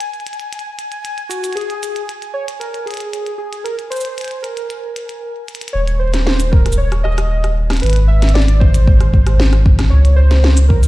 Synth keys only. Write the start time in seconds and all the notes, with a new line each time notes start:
1.29 F#4
1.55 G#4
2.34 C#5
2.60 A#4
2.86 G#4
3.38 G#4
3.64 A#4
3.90 C5
4.43 A#4
5.73 C#5
5.99 C5
6.25 C5
6.52 A#4
6.78 C#5
7.04 D#5
7.82 B4
8.08 E5
8.34 D5
8.60 C5
9.90 C#5
10.16 C5
10.69 A#4